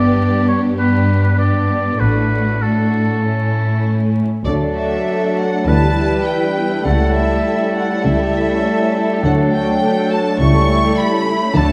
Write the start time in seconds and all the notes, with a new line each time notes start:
Already playing: G1 G2 B3 D4 G4 D5
0.48 C#5
0.76 B3 D4 G4 B4
1.23 B4
1.37 B3 D4 G4 D5
1.99 A1 A2 A3 D4 F#4 B4
2.60 A3 D4 F#4 A4
3.22 A3 C#4 E4
4.45 D2 D3 F#3 A3 D4 F#4 A4 D5
4.60 D4
4.75 F#4 E5
4.91 D4
5.06 A3
5.21 D4
5.36 F#4 F#5
5.52 D4
5.65 D2 D3 E3 G3 B3 E4 B4 A5
5.82 D4
5.97 E4
6.12 G4
6.26 E4 G5
6.42 D4
6.55 B3
6.71 D4
6.85 C#2 C#3 G3 A3 A4 F#5
7.01 C#4
7.15 E4 E5
7.30 G4
7.46 E4
7.61 C#4
7.76 A3 F#5
7.91 C#4
8.05 C#2 C#3 E4 E5
8.20 G4
8.35 E4
8.50 C#4
8.65 A3
8.79 C#4
8.94 E4
9.10 G4
9.23 D2 D3 F#3 A3 D4 F#5
9.39 D4
9.53 F#4 G5
9.69 D4
9.83 A3
9.98 D4
10.12 F#4 A5
10.27 D4
10.39 C#2 C#3 G3 A3 E4 C#6
10.56 C#4
10.70 E4
10.83 G4
10.98 E4 B5
11.12 C#4
11.27 A3
11.43 C#4
11.56 D2 D3 F#3 A3 D4 A4 A5